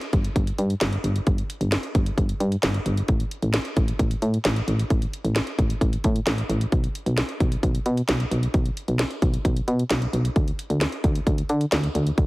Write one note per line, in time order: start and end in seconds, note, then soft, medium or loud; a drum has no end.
0.01 closed hi-hat soft
0.13 0.29 G1 medium
0.13 kick medium
0.13 closed hi-hat medium
0.25 closed hi-hat medium
0.36 0.52 G1 loud
0.36 kick medium
0.36 closed hi-hat medium
0.47 closed hi-hat medium
0.58 0.74 G2 loud
0.58 closed hi-hat medium
0.70 closed hi-hat soft
0.81 0.97 G1 loud
0.81 snare loud
0.81 closed hi-hat medium
0.93 closed hi-hat medium
1.04 1.20 G1 medium
1.04 closed hi-hat medium
1.16 closed hi-hat medium
1.27 1.43 G1 loud
1.27 kick loud
1.27 closed hi-hat medium
1.38 closed hi-hat soft
1.50 closed hi-hat medium
1.61 1.77 G1 medium
1.61 closed hi-hat medium
1.72 snare loud
1.72 closed hi-hat medium
1.83 closed hi-hat medium
1.95 2.11 G1 loud
1.95 kick medium
1.95 closed hi-hat medium
2.06 closed hi-hat medium
2.18 2.34 G1 loud
2.18 kick medium
2.18 closed hi-hat medium
2.29 closed hi-hat medium
2.40 2.56 G2 loud
2.40 closed hi-hat medium
2.52 closed hi-hat soft
2.63 2.79 G1 loud
2.63 snare loud
2.63 closed hi-hat medium
2.74 closed hi-hat medium
2.86 3.02 G1 loud
2.86 closed hi-hat medium
2.97 closed hi-hat medium
3.08 3.25 A1 loud
3.08 kick loud
3.08 closed hi-hat medium
3.20 closed hi-hat soft
3.31 closed hi-hat medium
3.42 3.59 A1 loud
3.42 closed hi-hat soft
3.54 snare loud
3.54 closed hi-hat medium
3.65 closed hi-hat medium
3.77 3.93 A1 loud
3.77 kick medium
3.77 closed hi-hat medium
3.88 closed hi-hat medium
3.99 4.15 A1 loud
3.99 kick medium
3.99 closed hi-hat medium
4.11 closed hi-hat soft
4.22 4.38 A2 loud
4.22 closed hi-hat medium
4.34 closed hi-hat soft
4.45 4.61 A1 loud
4.45 snare loud
4.45 closed hi-hat medium
4.56 closed hi-hat medium
4.68 4.84 A1 loud
4.68 closed hi-hat medium
4.79 closed hi-hat medium
4.90 5.06 A1 loud
4.90 kick loud
4.90 closed hi-hat medium
5.02 closed hi-hat soft
5.13 closed hi-hat medium
5.24 5.40 A1 loud
5.24 closed hi-hat soft
5.36 snare loud
5.36 closed hi-hat medium
5.47 closed hi-hat medium
5.59 5.75 A1 loud
5.59 kick medium
5.59 closed hi-hat medium
5.70 closed hi-hat medium
5.81 5.97 A1 loud
5.81 kick medium
5.81 closed hi-hat medium
5.93 closed hi-hat medium
6.04 6.20 A2 loud
6.04 kick medium
6.04 closed hi-hat medium
6.16 closed hi-hat soft
6.27 6.43 A1 loud
6.27 snare loud
6.27 closed hi-hat medium
6.38 closed hi-hat medium
6.49 6.65 A1 loud
6.49 closed hi-hat medium
6.61 closed hi-hat medium
6.72 6.88 B1 loud
6.72 kick loud
6.72 closed hi-hat medium
6.84 closed hi-hat soft
6.95 closed hi-hat medium
7.06 7.22 B1 medium
7.06 closed hi-hat medium
7.18 snare loud
7.18 closed hi-hat medium
7.29 closed hi-hat medium
7.40 7.56 B1 loud
7.40 kick medium
7.40 closed hi-hat medium
7.52 closed hi-hat medium
7.63 7.79 B1 loud
7.63 kick medium
7.63 closed hi-hat medium
7.75 closed hi-hat medium
7.86 8.02 B2 loud
7.86 closed hi-hat medium
7.97 closed hi-hat soft
8.08 8.25 B1 loud
8.08 snare loud
8.08 closed hi-hat medium
8.20 closed hi-hat medium
8.31 8.47 B1 loud
8.31 closed hi-hat medium
8.43 closed hi-hat medium
8.54 8.70 B1 loud
8.54 kick loud
8.54 closed hi-hat medium
8.66 closed hi-hat soft
8.77 closed hi-hat medium
8.88 9.04 B1 medium
8.88 closed hi-hat medium
8.99 snare loud
8.99 closed hi-hat medium
9.11 closed hi-hat soft
9.22 9.38 B1 loud
9.22 kick medium
9.22 closed hi-hat medium
9.34 closed hi-hat medium
9.45 9.61 B1 loud
9.45 kick medium
9.45 closed hi-hat medium
9.57 closed hi-hat medium
9.68 9.84 B2 loud
9.68 closed hi-hat medium
9.79 closed hi-hat soft
9.90 10.06 B1 loud
9.90 snare loud
9.90 closed hi-hat medium
10.02 closed hi-hat medium
10.13 10.29 B1 medium
10.13 closed hi-hat medium
10.25 closed hi-hat medium
10.36 10.52 D2 loud
10.36 kick loud
10.36 closed hi-hat medium
10.48 closed hi-hat soft
10.59 closed hi-hat medium
10.70 10.86 D2 medium
10.70 closed hi-hat medium
10.81 snare loud
10.81 closed hi-hat medium
10.92 closed hi-hat soft
11.04 11.20 D2 loud
11.04 kick medium
11.04 closed hi-hat medium
11.15 closed hi-hat medium
11.27 11.43 D2 loud
11.27 kick medium
11.27 closed hi-hat medium
11.38 closed hi-hat soft
11.49 11.65 D3 loud
11.49 closed hi-hat medium
11.61 closed hi-hat medium
11.72 11.88 D2 loud
11.72 snare loud
11.72 closed hi-hat medium
11.84 closed hi-hat medium
11.95 12.11 D2 loud
11.95 closed hi-hat medium
12.07 closed hi-hat medium
12.18 12.27 D2 loud
12.18 kick loud
12.18 closed hi-hat medium